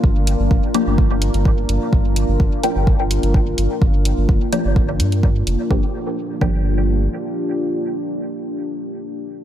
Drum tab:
HH |--x---x---xx--x-|--x---x---xx--x-|--x---x---xx--x-|----------------|
BD |o---o---o---o---|o---o---o---o---|o---o---o---o---|o-----o---------|

HH |----------------|
BD |----------------|